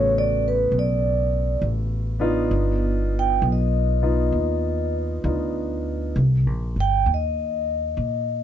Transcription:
Already playing: A1 C#3 A3 B3 F#4 C#5
0.18 D5
0.48 B4
0.72 B1
0.79 D5
1.61 A1
2.19 B3 D4 D#4 F4
2.51 G1
3.19 G5
3.42 B1
3.52 D#5
4.02 B3 D#4 F4
4.32 D#2
5.24 D2 B3 D4 D#4 F4
6.16 C2
6.46 A#1
6.76 G1
6.80 G5
7.06 D#2
7.14 D#5
7.97 A#2

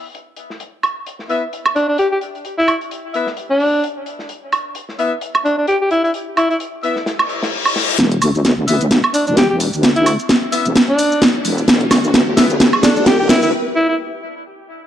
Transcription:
0.15 closed hi-hat
0.36 closed hi-hat
0.50 snare
0.60 closed hi-hat
0.83 closed hi-hat, high woodblock
1.06 closed hi-hat
1.19 snare
1.29 B3 E4 B4 E5, closed hi-hat
1.53 closed hi-hat
1.65 closed hi-hat, high woodblock
1.76 D4, closed hi-hat
1.89 D4
1.98 G4, closed hi-hat
2.12 G4
2.21 closed hi-hat
2.35 closed hi-hat
2.45 closed hi-hat
2.58 E4
2.68 closed hi-hat, high woodblock
2.81 closed hi-hat
2.91 closed hi-hat
3.14 B3 E4 B4 E5, closed hi-hat
3.27 snare
3.37 closed hi-hat
3.50 D4
3.60 open hi-hat
3.84 closed hi-hat
4.06 closed hi-hat
4.19 snare
4.29 closed hi-hat
4.52 closed hi-hat, high woodblock
4.75 closed hi-hat
4.89 snare
4.99 B3 E4 B4 E5, closed hi-hat
5.21 closed hi-hat
5.34 closed hi-hat, high woodblock
5.45 D4, closed hi-hat
5.58 D4
5.67 G4, closed hi-hat
5.81 G4
5.91 E4, closed hi-hat
6.04 E4, closed hi-hat
6.14 closed hi-hat
6.37 E4, closed hi-hat, high woodblock
6.50 E4, closed hi-hat
6.60 closed hi-hat
6.83 B3 E4 B4 E5, closed hi-hat
6.96 snare
7.06 snare, closed hi-hat, reverse cymbal
7.19 snare, high woodblock
7.29 closed hi-hat
7.43 snare, closed hi-hat
7.53 snare
7.65 closed hi-hat, high woodblock
7.76 snare, closed hi-hat
7.89 snare
7.99 E1, snare, closed hi-hat, riser, shaker
8.12 closed hi-hat
8.22 D2, open hi-hat, high woodblock, shaker
8.35 shaker
8.45 snare, closed hi-hat, shaker
8.68 D2 B3 E4 B4 E5, open hi-hat, shaker
8.81 closed hi-hat, shaker
8.91 snare, closed hi-hat, shaker
9.04 high woodblock
9.14 D4, open hi-hat, shaker
9.27 E1 D4, shaker
9.37 G4, snare, closed hi-hat, shaker
9.50 E1 G4
9.60 open hi-hat, shaker
9.73 D2, shaker
9.83 snare, closed hi-hat, shaker
9.96 E4, closed hi-hat
10.06 open hi-hat, high woodblock, shaker
10.19 shaker
10.29 snare, closed hi-hat, shaker
10.52 B3 E4 B4 E5, open hi-hat, shaker
10.65 E1, closed hi-hat, shaker
10.76 snare, closed hi-hat, shaker
10.89 D4
10.99 open hi-hat, shaker
11.12 shaker
11.22 snare, closed hi-hat, shaker
11.45 E1, open hi-hat, shaker
11.58 shaker
11.68 E1, snare, closed hi-hat, shaker
11.81 closed hi-hat
11.91 D2, snare, open hi-hat, high woodblock, shaker
12.04 shaker
12.14 snare, closed hi-hat, shaker
12.37 D2 B3 E4 B4 E5, snare, open hi-hat, shaker
12.50 closed hi-hat, shaker
12.60 snare, closed hi-hat, shaker
12.73 high woodblock
12.83 D4, snare, open hi-hat, shaker
12.96 E1 D4, shaker
13.06 G4, snare, closed hi-hat, shaker
13.19 E1 G4
13.29 E4, snare, open hi-hat, shaker
13.42 D2 E4, shaker
13.76 E4
13.89 E4

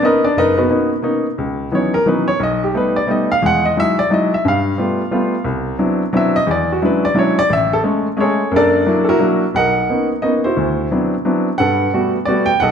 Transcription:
0.02 A#3 B3 C#4 D#4 A#4 B4 D#5
0.24 D4 D5
0.37 F#1 D#4 A#4 B4 D#5
0.58 B3 D#4 F#4 B4
0.69 A#3 B3 C#4 D#4
1.02 A#3 B3 C#4 D#4
1.38 C#2
1.71 E3 F#3 B3 C#4 D#4 C#5
1.94 A#4
2.06 E3 F#3 B3 C#4 D#4 B4
2.28 C#5
2.40 B1 D#5
2.64 G4
2.74 G3 A3 B3 D#4 B4
2.96 D5
3.07 G3 A3 B3 D#4 D#5
3.32 F5
3.42 E2 G#3 F#5
3.65 D#5
3.77 F#3 G#3 D#4 E4 E5
3.99 D5
4.10 F#3 G#3 D#4 E4 D#5
4.34 E5
4.45 G2 F5
4.78 G3 A3 B3 F4
5.11 G3 A3 B3 F4
5.44 C2
5.78 F#3 B3 C4 D4 E4
6.13 F#3 B3 C4 D4 E4
6.17 E5
6.36 D#5
6.47 E2
6.51 D5
6.72 F#4
6.82 F#3 G#3 C#4 D4 E4 B4
7.05 D5
7.14 F#3 G#3 C#4 D4 E4
7.19 C#5
7.39 D5
7.50 A1 E5
7.73 A4
7.84 G#3 A3 C#4
8.17 G#3 A3 C#4 C#5
8.21 G#4 A4
8.51 F#2 A#3
8.56 D4 A4 A#4 D5
8.86 F#3 A#3 D4 E4
9.05 A4
9.09 A#3 E4 F#4 A#4
9.19 F#3 A#3 D4 E4
9.54 B1 A#4 D#5 F#5
9.89 A#3 B3 C#4 D#4
10.22 A#3 B3 C#4 D#4 D#5
10.44 E4 F#4 C5
10.57 D2
10.91 F#3 B3 C4 D4 E4
11.25 F#3 B3 C4 D4 E4
11.58 G2 A4 B4 F#5
11.94 G3 A3 B3 F#4
12.25 G3 A3 B3 F#4 D5
12.46 G5
12.60 B1 A4 D#5 F#5

